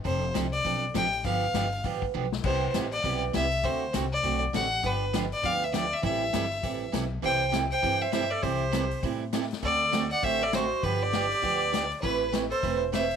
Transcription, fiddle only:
X:1
M:4/4
L:1/8
Q:"Swing" 1/4=200
K:C
V:1 name="Fiddle"
c2 z d2 z g2 | f4 z4 | c2 z d2 z e2 | c2 z d2 z ^f2 |
B2 z d f e d e | e6 z2 | g2 z g2 e e d | c4 z4 |
d3 ^f e d c2 | B d6 z | B2 z c2 z e2 |]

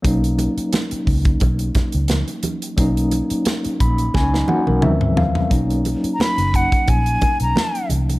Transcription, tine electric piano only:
X:1
M:4/4
L:1/16
Q:"Swing 16ths" 1/4=88
K:B
V:1 name="Tine electric piano"
z16 | z6 b2 [Cg] [F,D] [A,Ff] [CA] e2 =f2 | z16 |]
V:2 name="Tine electric piano"
[F,A,CD]16 | [F,A,CD]8 z4 [E,=F,=G,=CD]4 | [F,A,CD]16 |]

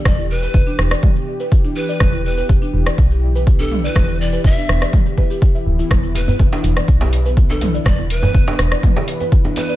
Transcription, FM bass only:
X:1
M:4/4
L:1/8
Q:1/4=123
K:Em
V:1 name="FM bass" clef=bass
E,,,2 E,,, E,,, z4 | E,,,2 E,,, E,,, B,,,4 | E,,,2 E,,, E,,, z3 D,,, | E,,,2 E,,, E,,, B,,,4 |
E,,,2 E,,, E,,, z4 |]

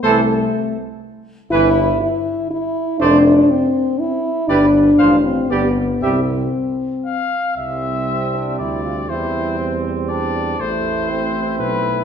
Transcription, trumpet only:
X:1
M:3/4
L:1/8
Q:1/4=120
K:C
V:1 name="Trumpet"
A z4 z | B z4 z | c z4 z | B z c z G z |
G z4 z | C6 | C4 D2 | E6 |]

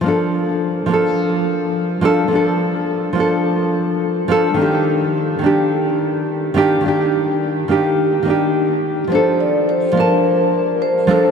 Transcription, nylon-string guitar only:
X:1
M:4/4
L:1/8
Q:"Swing 16ths" 1/4=106
K:Bb
V:1 name="Nylon-string guitar"
[F,B,DA]3 [F,B,DA]4 [F,B,DA] | [F,B,DA]3 [F,B,DA]4 [F,B,DA] | [E,B,DG]3 [E,B,DG]4 [E,B,DG] | [E,B,DG]3 [E,B,DG]2 [E,B,DG]3 |
[F,B,DA]3 [F,B,Da]4 [F,B,DA] |]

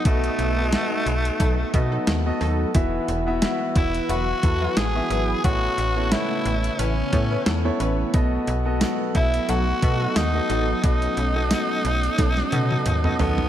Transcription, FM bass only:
X:1
M:4/4
L:1/16
Q:"Swing 16ths" 1/4=89
K:Bmix
V:1 name="FM bass" clef=bass
B,,,2 B,,,3 z B,,,2 B,,,2 B,,2 D,,2 D,,2 | E,,,2 E,,,3 z E,,,2 E,,,2 E,,2 A,,,2 G,,,2 | A,,,2 A,,,3 z A,,,2 A,,,2 A,,2 E,,2 A,,,2 | B,,,2 B,,,3 z B,,,2 B,,,2 B,,2 D,,2 A,,,2 |
B,,,2 B,,,3 z B,,,2 B,,,2 B,,2 D,,2 D,,2 |]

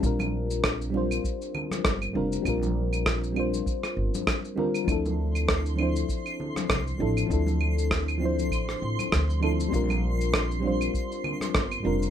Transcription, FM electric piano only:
X:1
M:4/4
L:1/8
Q:"Swing 16ths" 1/4=99
K:Bblyd
V:1 name="FM electric piano"
[G,CDFB]3 [G,CDFc]4 [G,CDFB] | [G,CDFB]3 [G,CDFc]4 [G,CDFB] | [F,CDEA]3 [F,CDEc]4 [F,CDEA] | [F,CDEA]3 [F,CDEc]4 [F,CDEA] |
[G,CDFB]3 [G,CDFc]4 [G,CDFB] |]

